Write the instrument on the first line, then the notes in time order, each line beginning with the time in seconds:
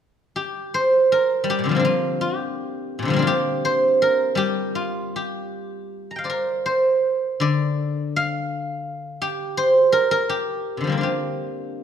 guzheng
0.36 G4
0.74 C5
1.12 A#4
1.44 G3
1.50 G4
1.59 A#2
1.64 C3 D3
1.69 F3 G3
1.75 A#3 C4
1.79 D4
1.85 F4
2.21 G4
2.99 A#2 C3
3.05 D3 F3
3.10 G3 A#3
3.16 C4 D4
3.22 F4
3.27 G4
3.65 C5
4.02 A#4
4.35 G3 G4
4.75 F4
5.16 G4
6.11 A#5
6.16 F5 G5
6.24 C5 D5
6.30 A#4
6.66 C5
7.40 D3 D5
8.16 F5
9.22 G4
9.57 C5
9.92 A#4
10.11 A#4
10.29 G4
10.77 C3 D3
10.84 F3 G3
10.90 A#3 C4
10.97 D4 F4
11.03 G4